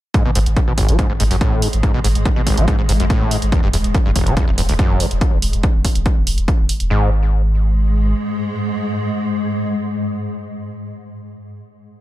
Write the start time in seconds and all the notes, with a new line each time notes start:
0.14 G#2 G#3, kick, closed hi-hat
0.25 G#1 B2
0.35 G#1 G#2, open hi-hat
0.46 G#1, closed hi-hat
0.56 A2, kick, closed hi-hat
0.67 G#1 B2
0.78 G#1, kick, open hi-hat
0.88 G#1 F#3, closed hi-hat
0.99 G#2, kick, closed hi-hat
1.10 G#1 G#2
1.20 G#1 G#2, open hi-hat
1.31 G#1 F#2, open hi-hat
1.41 A2, kick, closed hi-hat
1.52 G#1
1.62 G#2, open hi-hat
1.73 G#1, closed hi-hat
1.83 G#2, kick, closed hi-hat
1.94 G#1 B2
2.04 G#1 G#2, open hi-hat
2.15 G#1, closed hi-hat
2.25 A2, kick, closed hi-hat
2.36 G#1 B2
2.46 G#1, kick, open hi-hat
2.57 G#1 F#3, closed hi-hat
2.68 G#2, kick, closed hi-hat
2.79 G#1 G#2
2.89 G#1 G#2, open hi-hat
3.00 G#1 F#2, closed hi-hat
3.10 A2, kick, closed hi-hat
3.21 G#1
3.31 G#2, open hi-hat
3.42 G#1, closed hi-hat
3.52 E2, kick, closed hi-hat
3.63 E1 G2
3.73 E1 E2, open hi-hat
3.84 E1, closed hi-hat
3.94 F#2, kick, closed hi-hat
4.05 E1 G2
4.16 E1, kick, open hi-hat
4.26 E1 D3, closed hi-hat
4.37 E2, kick, closed hi-hat
4.48 E1 E2
4.58 E1 E2, open hi-hat
4.69 E1 D2, open hi-hat
4.79 F#2, kick, closed hi-hat
4.90 E1
5.00 E2, open hi-hat
5.11 E1, closed hi-hat
5.21 kick, closed hi-hat
5.32 E1
5.42 E1, open hi-hat
5.53 E1, closed hi-hat
5.63 kick, closed hi-hat
5.74 E1
5.85 kick, open hi-hat
5.95 E1, closed hi-hat
6.06 kick, closed hi-hat
6.17 E1
6.27 E1, open hi-hat
6.38 E1, closed hi-hat
6.48 kick, closed hi-hat
6.59 E1
6.69 open hi-hat
6.80 E1, closed hi-hat
6.90 G#1 G#2 G#3